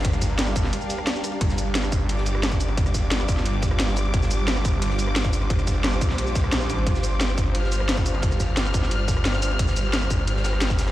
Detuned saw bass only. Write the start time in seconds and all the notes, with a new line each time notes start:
0.05 G1
0.56 G1
1.41 G1
1.92 G1
2.77 G1
3.29 G1
4.14 G1
4.65 G1
5.50 G1
6.01 A#1
6.18 A#1
6.65 A1
6.87 G1
7.38 G1
8.23 G1
8.74 G1
9.59 G1
10.10 G1